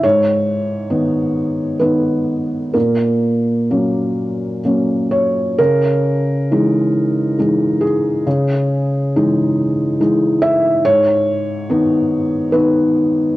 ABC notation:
X:1
M:3/4
L:1/8
Q:1/4=68
K:C#dor
V:1 name="Felt piano"
c4 B2 | A4 z c | A4- A G- | G4 z e |
c4 B2 |]
V:2 name="Felt piano" clef=bass
G,,2 [D,B,D]2 [D,B,D]2 | A,,2 [F,A,C]2 [F,A,C]2 | C,2 [E,G,D]2 [E,G,D]2 | C,2 [E,G,D]2 [E,G,D]2 |
G,,2 [D,B,D]2 [D,B,D]2 |]